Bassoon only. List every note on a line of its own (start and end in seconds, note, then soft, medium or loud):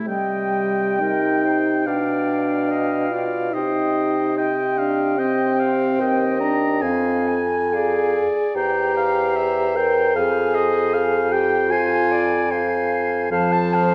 0.06 1.82 C3 soft
1.86 3.50 B2 soft
3.54 6.01 C3 soft
6.00 6.83 D#2 medium
6.82 8.27 F2 medium
8.55 10.17 E2 medium
10.16 13.31 F2 medium
13.31 13.95 F2 medium